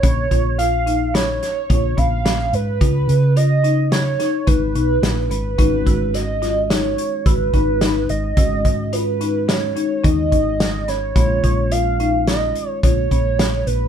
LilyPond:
<<
  \new Staff \with { instrumentName = "Analog synth lead" } { \time 5/4 \key gis \dorian \tempo 4 = 108 cis''4 eis''4 cis''4. eis''4 b'8~ | b'4 dis''4 cis''4 b'4. b'8~ | b'4 dis''4 cis''4 b'4. dis''8~ | dis''4 b'4 cis''4 dis''4. cis''8~ |
cis''4 eis''4 dis''4 cis''4. b'8 | }
  \new Staff \with { instrumentName = "Marimba" } { \time 5/4 \key gis \dorian cis'8 eis'8 eis'8 dis'8 cis'4 eis'8 cis'8 cis'4 | eis'4 eis'8 dis'8 cis'8 dis'8 dis'8 dis'4 cis'8 | dis'8 fis'8 fis'8 eis'8 dis'4 fis'8 dis'8 dis'4 | fis'4 eis'8 dis'8 cis'8 dis'8 dis'8 dis'4 cis'8 |
cis'8 eis'8 eis'8 dis'8 cis'4 eis'8 cis'8 cis'4 | }
  \new Staff \with { instrumentName = "Tine electric piano" } { \time 5/4 \key gis \dorian r1 r4 | r1 r4 | <dis gis cis' fis'>1~ <dis gis cis' fis'>4 | <dis gis cis' fis'>1~ <dis gis cis' fis'>4 |
<dis gis cis' eis'>1~ <dis gis cis' eis'>4 | }
  \new Staff \with { instrumentName = "Fingered electric bass" } { \clef bass \time 5/4 \key gis \dorian ais,,8 ais,,2 r8 ais,,8 ais,,4 gis,8 | cis,8 cis2 r8 gis,,8 b,,8 ais,,8 gis,,8 | gis,,8 gis,,2 r8 gis,,8 gis,,4 gis,,8 | gis,,8 gis,2 r8 dis,8 gis,,4. |
ais,,8 ais,,2 r8 ais,,8 ais,,4 ais,,8 | }
  \new DrumStaff \with { instrumentName = "Drums" } \drummode { \time 5/4 <hh bd>8 <hh bd>8 hh8 hh8 <hh sn>8 <hh sn>8 <hh bd>8 <hh bd>8 <hh sn>8 hh8 | <hh bd>8 hh8 hh8 hh8 <hh sn>8 <hh sn>8 <hh bd>8 hh8 <hh sn>8 hh8 | <hh bd>8 <hh bd>8 <hh sn>8 <hh sn>8 <hh sn>8 hh8 <hh bd>8 <hh bd>8 <hh sn>8 hh8 | <hh bd>8 <hh bd>8 hh8 hh8 <hh sn>8 hh8 <hh bd>8 <hh bd>8 <hh sn>8 <hh sn>8 |
<hh bd>8 <hh bd>8 hh8 hh8 <hh sn>8 hh8 <hh bd>8 <hh bd>8 <hh sn>8 hh8 | }
>>